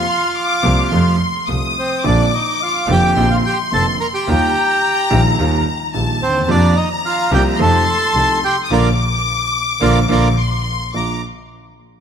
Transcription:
Already playing: bandoneon F4 F5, violin section C6
0.36 violin section D6
0.63 grand piano C2 C3 F3 A#3 F4, double bass C2
0.90 double bass F2, grand piano F2 C3 F3 A3 F4, violin section C6
1.47 double bass C2, grand piano C2 C3 F3 A3 F4, violin section D#6
1.79 bandoneon C4 C5
2.03 grand piano A#1 A#2 D3 A#3 C4 F4, double bass A#1, bandoneon D4 D5, violin section D6
2.34 bandoneon D#4 D#5
2.62 bandoneon F4 F5
2.88 double bass F1, grand piano F1 F2 D3 A#3 C4 F4, bandoneon G5
2.92 bandoneon G4
3.16 double bass A#1, grand piano A#1 A#2 D3 A#3 C4 F4, violin section C6
3.31 bandoneon F4 F5
3.46 bandoneon G4 G5
3.72 double bass F1, grand piano F1 F2 D3 A#3 C4 F4, bandoneon A4 A5
4.00 bandoneon A#4 A#5
4.14 bandoneon G4 G5
4.27 grand piano D#2 D#3 G3 A#3 F4, double bass D#2, violin section A#5
5.11 grand piano A#1 A#2 D#3 G3 A#3 F4, double bass A#1
5.39 grand piano D#2 D#3 G3 A#3 F4, double bass D#2
5.93 double bass A#1, grand piano A#1 A#2 D#3 G3 A#3 F4, violin section A5
6.22 double bass D#2, bandoneon C4 C5
6.29 grand piano D2
6.34 grand piano D#2
6.41 grand piano E2, violin section A5
6.48 grand piano F2 C3 F3 A#3 F4, double bass F2, bandoneon D4 D5, violin section A#5
6.76 bandoneon D#4 D#5
7.06 bandoneon F4 F5
7.31 double bass C2, grand piano C2 C3 F3 A#3 F4, bandoneon G4 G5
7.54 bandoneon A#5
7.59 double bass F2, grand piano F2 C3 F3 A3 D#4, bandoneon A4 A5, violin section C6
8.13 double bass C2, grand piano C2 C3 F3 A3 D#4
8.45 bandoneon G4 G5
8.63 violin section D#6
8.70 double bass A#1, grand piano D3 F3 A#3, bandoneon F4 A#4 D5, violin section D6
9.80 double bass A#1, grand piano D3 F3 A#3, bandoneon F4 A#4 D5
10.09 double bass A#1, grand piano D3 F3 A#3, bandoneon F4 A#4 D5
10.38 violin section C6
10.93 double bass A#1, grand piano A#1 A#3 D4 F4, bandoneon A#5, violin section D6

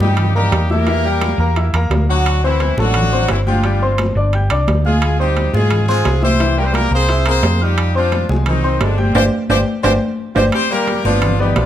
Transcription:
0.00 fingered electric bass G2, horn section G3 D#4 G4, grand piano G3 G4 G5, high conga
0.17 high conga, low conga, high timbale
0.35 horn section G3 D#4 G4, grand piano A#3 A#4 A#5, high conga, low conga
0.51 fingered electric bass E2, high conga, high timbale, low timbale
0.70 horn section A#3 G4 A#4, grand piano E4 E5 E6, high conga
0.87 grand piano E3 E4 E5, high conga, high timbale
1.05 grand piano G3 G4 G5, high conga
1.21 high conga, high timbale, low timbale
1.38 fingered electric bass E2, grand piano A#3 A#4 A#5, high conga
1.56 grand piano E4 E5 E6, high conga, high timbale
1.73 fingered electric bass E2, grand piano A#3 A#4 A#5, high conga, high timbale
1.90 fingered electric bass D2, high conga, high timbale, low timbale
2.09 horn section F#3 D4 F#4, grand piano F#4 F#5 F#6
2.25 high conga, high timbale
2.43 horn section E3 C4 E4, grand piano C4 C5 C6, high conga
2.60 high conga, high timbale, low timbale
2.77 fingered electric bass A1, horn section F#3 D4 F#4, grand piano A3 A4 A5, high conga
2.94 high conga, low conga, high timbale
3.13 grand piano C4 C5 C6, high conga
3.28 fingered electric bass G1, horn section E3 C4 E4, high conga, high timbale, low timbale
3.47 horn section F3 D4 F4, grand piano G4 G5 G6, high conga
3.64 grand piano G3 G4 G5, high conga, high timbale
3.82 grand piano C4 C5 C6, high conga
3.98 high conga, high timbale, low timbale
4.15 fingered electric bass G1, grand piano D4 D5 D6, high conga
4.33 grand piano G4 G5 G6, high conga, high timbale
4.50 fingered electric bass C2, grand piano D4 D5 D6, high conga, high timbale
4.67 fingered electric bass D2, high conga, high timbale, low timbale
4.85 horn section G#3 F4 G#4, grand piano F4 F5 F6, high conga
5.02 high conga, high timbale
5.19 horn section G3 D#4 G4, grand piano C4 C5 C6, high conga
5.37 high conga, high timbale, low timbale
5.53 fingered electric bass G#2, horn section G#3 F4 G#4, grand piano G#3 G#4 G#5, high conga
5.71 high conga, low conga, high timbale
5.88 horn section G#3 F4 G#4, grand piano C4 C5 C6, high conga
6.05 fingered electric bass C2, high conga, high timbale, low timbale
6.22 horn section C4 G4 C5, grand piano E4 E5 E6, high conga
6.40 grand piano E3 E4 E5, high timbale
6.58 grand piano G3 G4 G5, horn section A#3 G4 A#4
6.65 horn section C4 C5
6.72 horn section A#3 G4 A#4, high conga, high timbale, low timbale
6.91 fingered electric bass C2, grand piano A#3 A#4 A#5, horn section C4 G#4 C5, high conga
7.09 grand piano E4 E5 E6, high conga, high timbale
7.26 grand piano A#3 A#4 A#5, horn section C4 G#4 C5, high conga, high timbale
7.42 fingered electric bass F2, high conga, high timbale, low timbale
7.61 horn section G3 D#4 G4, grand piano F4 F5 F6
7.78 high timbale
7.95 horn section F3 D4 F4, grand piano C4 C5 C6, high conga
8.12 high conga, high timbale, low timbale
8.29 fingered electric bass C2, grand piano G#3 G#4 G#5, high conga
8.46 horn section D#3 C4 D#4, high conga, low conga, high timbale
8.64 grand piano C4 C5 C6, high conga
8.81 fingered electric bass G1, horn section D3 G#3 D4, high conga, high timbale, low timbale
8.98 horn section C3 G3 C4, grand piano G4 G5 G6, high conga
9.15 fingered electric bass G1, horn section C4 F4 G4 C5, grand piano G4 C5 D5, high conga, high timbale
9.49 fingered electric bass G1, horn section C4 F4 G4 C5, grand piano G4 C5 D5, high conga, high timbale
9.83 fingered electric bass G1, horn section C4 F4 G4 C5, grand piano G4 C5 D5, high conga, high timbale
10.35 fingered electric bass G1, horn section C4 F4 G4 C5, grand piano G4 C5 D5, high conga, high timbale
10.52 horn section C4 G4 C5, high conga, high timbale
10.71 grand piano G3 G4 G5, horn section A#3 G4 A#4, high conga
10.87 high conga, high timbale, low timbale
11.04 fingered electric bass G1, horn section F3 D4 F4, grand piano B3 B4 D5, high conga
11.22 high conga, low conga, high timbale
11.39 horn section G3 D#4 G4, grand piano B3 B4 D5, high conga, low conga
11.56 fingered electric bass A#1, horn section F3 D4 F4, high conga, high timbale, low timbale

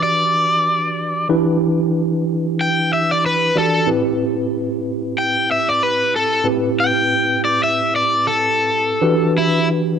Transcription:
Already playing: tine electric piano E3 D4 F#4 G4 B4
0.03 overdriven electric guitar D5
1.29 tine electric piano E3 D4 E4 G4 B4
2.61 overdriven electric guitar G5
2.93 overdriven electric guitar E5
3.11 overdriven electric guitar D5
3.26 overdriven electric guitar B4
3.55 tine electric piano E3 D4 F#4 G4 D5, overdriven electric guitar A4
3.86 tine electric piano A2 C4 E4 G4 B4
5.18 overdriven electric guitar G5
5.51 overdriven electric guitar E5
5.69 overdriven electric guitar D5
5.83 overdriven electric guitar B4
6.16 overdriven electric guitar A4
6.44 tine electric piano A2 C4 E4 G4 B4
6.80 overdriven electric guitar G5
7.45 overdriven electric guitar D5
7.64 overdriven electric guitar E5
7.96 overdriven electric guitar D5
8.27 overdriven electric guitar A4
9.01 tine electric piano E3 D4 F#4 G4 B4
9.38 overdriven electric guitar E4

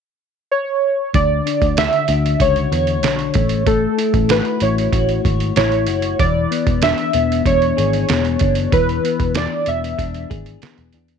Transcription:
0.51 synth keys C#5
1.14 picked electric bass D2, clean electric guitar D3, synth keys D5, kick, closed hi-hat
1.46 clean electric guitar D4, closed hi-hat
1.62 picked electric bass D2, kick, closed hi-hat
1.77 clean electric guitar F#4, synth keys E5, snare, closed hi-hat
1.93 closed hi-hat
2.08 picked electric bass D2, clean electric guitar D4, closed hi-hat
2.26 closed hi-hat
2.40 picked electric bass C#2, clean electric guitar F#4, synth keys C#5, kick, closed hi-hat
2.56 closed hi-hat
2.72 picked electric bass E2, clean electric guitar C#5, closed hi-hat
2.87 closed hi-hat
3.03 picked electric bass B1, clean electric guitar D4, snare, closed hi-hat
3.19 closed hi-hat
3.34 picked electric bass A1, clean electric guitar A3, kick, closed hi-hat
3.49 closed hi-hat
3.66 clean electric guitar A3, synth keys A4, kick, closed hi-hat
3.98 clean electric guitar E4, closed hi-hat
4.14 picked electric bass A1, kick, closed hi-hat
4.29 clean electric guitar F#4, synth keys B4, snare, closed hi-hat
4.45 closed hi-hat
4.60 picked electric bass A1, clean electric guitar E4, synth keys C#5, closed hi-hat
4.78 closed hi-hat
4.93 picked electric bass A1, clean electric guitar F#4, kick, closed hi-hat
5.09 closed hi-hat
5.25 picked electric bass G#1, clean electric guitar C#5, kick, closed hi-hat
5.40 closed hi-hat
5.56 picked electric bass A1, clean electric guitar E4, synth keys C#5, snare, closed hi-hat
5.72 closed hi-hat
5.87 picked electric bass F#1, clean electric guitar F#4, closed hi-hat
6.02 closed hi-hat
6.19 picked electric bass E1, clean electric guitar E3, synth keys D5, kick, closed hi-hat
6.51 clean electric guitar B3, closed hi-hat
6.67 picked electric bass E1, kick, closed hi-hat
6.82 clean electric guitar D4, synth keys E5, snare, closed hi-hat
6.98 closed hi-hat
7.13 picked electric bass E1, clean electric guitar B3, closed hi-hat
7.32 closed hi-hat
7.45 picked electric bass E1, clean electric guitar D4, synth keys C#5, kick, closed hi-hat
7.62 closed hi-hat
7.77 picked electric bass G#1, clean electric guitar G#4, closed hi-hat
7.93 closed hi-hat
8.09 picked electric bass E1, clean electric guitar B3, snare, closed hi-hat
8.25 closed hi-hat
8.39 picked electric bass F#1, clean electric guitar D4, kick, closed hi-hat
8.55 closed hi-hat
8.72 picked electric bass E1, clean electric guitar E3, synth keys B4, kick, closed hi-hat
8.89 closed hi-hat
9.03 clean electric guitar B3, closed hi-hat
9.20 picked electric bass E1, kick, closed hi-hat
9.35 clean electric guitar D4, synth keys D5, snare, closed hi-hat
9.66 picked electric bass E1, clean electric guitar B3, synth keys E5, closed hi-hat
9.84 closed hi-hat
9.98 picked electric bass E1, clean electric guitar D4, kick, closed hi-hat
10.14 closed hi-hat
10.30 picked electric bass G#1, clean electric guitar G#4, kick, closed hi-hat
10.46 closed hi-hat
10.62 clean electric guitar B3, muted picked electric bass stroke, snare, closed hi-hat
10.78 picked electric bass E1, closed hi-hat
10.93 picked electric bass E2, clean electric guitar D4, closed hi-hat
11.08 closed hi-hat

